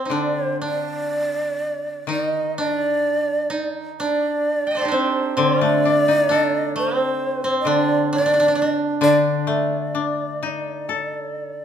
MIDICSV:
0, 0, Header, 1, 4, 480
1, 0, Start_track
1, 0, Tempo, 988468
1, 58, Time_signature, 4, 2, 24, 8
1, 1017, Tempo, 956938
1, 1977, Tempo, 913242
1, 4857, Tempo, 944882
1, 5954, End_track
2, 0, Start_track
2, 0, Title_t, "Shakuhachi"
2, 0, Program_c, 0, 77
2, 0, Note_on_c, 0, 72, 57
2, 61, Note_on_c, 0, 74, 64
2, 68, Note_off_c, 0, 72, 0
2, 216, Note_off_c, 0, 74, 0
2, 216, Note_on_c, 0, 72, 64
2, 303, Note_off_c, 0, 72, 0
2, 310, Note_on_c, 0, 74, 82
2, 1002, Note_off_c, 0, 74, 0
2, 1026, Note_on_c, 0, 75, 74
2, 1246, Note_off_c, 0, 75, 0
2, 1260, Note_on_c, 0, 74, 90
2, 1823, Note_off_c, 0, 74, 0
2, 1977, Note_on_c, 0, 74, 79
2, 2466, Note_on_c, 0, 72, 79
2, 2474, Note_off_c, 0, 74, 0
2, 2709, Note_on_c, 0, 74, 98
2, 2717, Note_off_c, 0, 72, 0
2, 3427, Note_off_c, 0, 74, 0
2, 3433, Note_on_c, 0, 72, 75
2, 3850, Note_off_c, 0, 72, 0
2, 3868, Note_on_c, 0, 75, 68
2, 3905, Note_on_c, 0, 74, 85
2, 3913, Note_off_c, 0, 75, 0
2, 4142, Note_off_c, 0, 74, 0
2, 4145, Note_on_c, 0, 73, 95
2, 4203, Note_off_c, 0, 73, 0
2, 4203, Note_on_c, 0, 74, 95
2, 4465, Note_off_c, 0, 74, 0
2, 4619, Note_on_c, 0, 74, 89
2, 5954, Note_off_c, 0, 74, 0
2, 5954, End_track
3, 0, Start_track
3, 0, Title_t, "Koto"
3, 0, Program_c, 1, 107
3, 0, Note_on_c, 1, 60, 39
3, 26, Note_on_c, 1, 63, 36
3, 54, Note_on_c, 1, 62, 59
3, 84, Note_off_c, 1, 63, 0
3, 297, Note_off_c, 1, 62, 0
3, 299, Note_on_c, 1, 62, 58
3, 1013, Note_on_c, 1, 63, 66
3, 1043, Note_off_c, 1, 62, 0
3, 1201, Note_off_c, 1, 60, 0
3, 1261, Note_on_c, 1, 62, 69
3, 1291, Note_off_c, 1, 63, 0
3, 1722, Note_on_c, 1, 63, 65
3, 1752, Note_off_c, 1, 62, 0
3, 1972, Note_on_c, 1, 62, 65
3, 2003, Note_off_c, 1, 63, 0
3, 2324, Note_on_c, 1, 79, 29
3, 2345, Note_on_c, 1, 75, 29
3, 2366, Note_on_c, 1, 74, 39
3, 2376, Note_on_c, 1, 72, 42
3, 2384, Note_on_c, 1, 69, 39
3, 2401, Note_on_c, 1, 67, 43
3, 2420, Note_on_c, 1, 63, 51
3, 2435, Note_off_c, 1, 62, 0
3, 2437, Note_on_c, 1, 62, 51
3, 2451, Note_off_c, 1, 74, 0
3, 2454, Note_on_c, 1, 60, 59
3, 2468, Note_off_c, 1, 75, 0
3, 2689, Note_off_c, 1, 62, 0
3, 2691, Note_off_c, 1, 60, 0
3, 2691, Note_on_c, 1, 60, 75
3, 2723, Note_off_c, 1, 63, 0
3, 2775, Note_off_c, 1, 60, 0
3, 2775, Note_on_c, 1, 61, 75
3, 2833, Note_off_c, 1, 61, 0
3, 2833, Note_on_c, 1, 62, 75
3, 3031, Note_off_c, 1, 79, 0
3, 3175, Note_off_c, 1, 62, 0
3, 3177, Note_on_c, 1, 62, 66
3, 3277, Note_off_c, 1, 72, 0
3, 3384, Note_off_c, 1, 69, 0
3, 3422, Note_on_c, 1, 57, 66
3, 3473, Note_off_c, 1, 67, 0
3, 3532, Note_off_c, 1, 57, 0
3, 3532, Note_on_c, 1, 60, 66
3, 3779, Note_off_c, 1, 60, 0
3, 3781, Note_on_c, 1, 60, 62
3, 3898, Note_off_c, 1, 62, 0
3, 3900, Note_on_c, 1, 62, 78
3, 4139, Note_off_c, 1, 62, 0
3, 4141, Note_on_c, 1, 62, 66
3, 4169, Note_off_c, 1, 62, 0
3, 4171, Note_on_c, 1, 62, 50
3, 4208, Note_off_c, 1, 62, 0
3, 4210, Note_on_c, 1, 62, 61
3, 4250, Note_off_c, 1, 62, 0
3, 4252, Note_on_c, 1, 62, 52
3, 4282, Note_off_c, 1, 62, 0
3, 4284, Note_on_c, 1, 62, 73
3, 4326, Note_off_c, 1, 62, 0
3, 4328, Note_on_c, 1, 62, 60
3, 4364, Note_off_c, 1, 62, 0
3, 4366, Note_on_c, 1, 62, 63
3, 4398, Note_off_c, 1, 62, 0
3, 4400, Note_on_c, 1, 62, 55
3, 4606, Note_off_c, 1, 62, 0
3, 4608, Note_on_c, 1, 62, 70
3, 5138, Note_off_c, 1, 60, 0
3, 5954, Note_off_c, 1, 62, 0
3, 5954, End_track
4, 0, Start_track
4, 0, Title_t, "Koto"
4, 0, Program_c, 2, 107
4, 0, Note_on_c, 2, 69, 31
4, 47, Note_on_c, 2, 50, 38
4, 56, Note_off_c, 2, 69, 0
4, 1005, Note_on_c, 2, 51, 45
4, 1491, Note_off_c, 2, 50, 0
4, 2461, Note_off_c, 2, 51, 0
4, 2695, Note_on_c, 2, 50, 54
4, 2821, Note_on_c, 2, 57, 44
4, 2947, Note_on_c, 2, 62, 36
4, 3067, Note_on_c, 2, 63, 40
4, 3188, Note_on_c, 2, 69, 44
4, 3779, Note_off_c, 2, 57, 0
4, 3885, Note_off_c, 2, 50, 0
4, 3891, Note_on_c, 2, 50, 49
4, 3901, Note_off_c, 2, 62, 0
4, 4021, Note_off_c, 2, 63, 0
4, 4141, Note_off_c, 2, 69, 0
4, 4599, Note_off_c, 2, 50, 0
4, 4606, Note_on_c, 2, 50, 63
4, 4848, Note_on_c, 2, 57, 46
4, 5090, Note_on_c, 2, 62, 42
4, 5334, Note_on_c, 2, 63, 45
4, 5569, Note_on_c, 2, 69, 37
4, 5812, Note_off_c, 2, 57, 0
4, 5954, Note_off_c, 2, 50, 0
4, 5954, Note_off_c, 2, 62, 0
4, 5954, Note_off_c, 2, 63, 0
4, 5954, Note_off_c, 2, 69, 0
4, 5954, End_track
0, 0, End_of_file